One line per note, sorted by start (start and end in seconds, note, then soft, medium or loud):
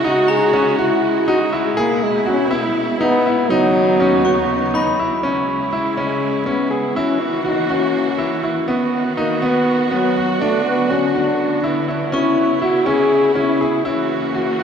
0.00 1.73 C#3 medium
0.00 3.45 G#3 medium
0.00 1.73 F#4 medium
0.04 0.46 D#4 medium
0.04 0.32 F#4 loud
0.28 0.78 G#4 loud
0.28 1.38 A#5 medium
0.53 0.74 C#4 medium
0.78 1.24 E4 medium
0.78 1.20 F#4 medium
1.28 1.49 D#4 medium
1.28 1.40 F#4 loud
1.52 1.80 G#3 medium
1.52 1.73 E4 medium
1.77 3.49 B2 medium
1.77 2.05 A#3 medium
1.77 3.48 E4 medium
1.77 2.19 G#4 medium
2.03 2.27 G#3 medium
2.26 2.72 C#4 medium
2.26 2.47 F#4 medium
2.51 2.93 E4 medium
2.99 3.51 B3 loud
2.99 3.21 D#4 medium
3.26 3.47 E4 medium
3.50 5.21 D#2 medium
3.50 5.21 C#3 medium
3.50 4.73 F#3 loud
3.50 5.21 B3 medium
3.50 5.21 D#4 medium
3.50 3.92 D#4 medium
4.00 4.21 C#4 medium
4.25 4.66 F#4 medium
4.25 5.34 C#6 medium
4.74 4.95 D#4 medium
4.74 5.44 B5 medium
4.99 5.20 E4 medium
5.23 6.94 C#3 medium
5.23 6.94 G#3 medium
5.23 5.65 C#4 medium
5.23 6.94 E4 medium
5.73 5.93 E4 medium
5.97 6.49 G#3 medium
5.97 6.39 C#4 medium
6.46 6.98 B3 medium
6.46 6.67 C#4 medium
6.71 6.92 G#4 medium
6.96 8.67 E3 medium
6.96 8.67 A#3 medium
6.96 7.21 C#4 medium
6.96 7.38 E4 medium
6.96 8.66 F#4 medium
7.20 7.44 E4 loud
7.45 7.72 D#4 medium
7.45 7.65 F#4 medium
7.69 8.44 C#4 medium
7.69 8.11 F#4 medium
8.18 8.39 E4 medium
8.43 8.64 E4 medium
8.68 10.39 D#3 medium
8.68 9.10 B3 medium
8.68 10.39 B3 medium
8.68 12.09 F#4 medium
8.93 9.04 B3 medium
9.17 9.40 A#3 medium
9.17 9.38 D#4 medium
9.42 9.84 B3 medium
9.42 9.88 B3 medium
9.91 10.42 F#3 medium
9.91 10.12 B3 medium
10.16 10.37 F#4 medium
10.39 12.10 D3 medium
10.39 10.65 A3 medium
10.39 13.82 B3 medium
10.39 10.83 D4 medium
10.66 10.92 B3 loud
10.90 11.17 C#4 medium
10.90 11.11 F#4 medium
11.15 11.89 D4 loud
11.15 11.56 F#4 medium
11.64 11.84 E4 medium
11.88 12.09 E4 medium
12.12 13.84 C#3 medium
12.12 12.54 C#4 medium
12.12 13.84 E4 medium
12.12 12.59 E4 medium
12.12 13.22 C#6 medium
12.62 12.83 E4 medium
12.62 12.89 F#4 loud
12.86 13.28 C#4 medium
12.86 13.35 G#4 loud
13.35 13.57 C#4 medium
13.35 13.87 E4 loud
13.61 13.82 G#4 medium
13.84 14.63 E3 medium
13.84 14.63 A#3 medium
13.84 14.59 C#4 medium
13.84 14.27 E4 medium
13.84 14.63 F#4 medium
14.34 14.55 F#4 medium
14.60 14.63 F#4 medium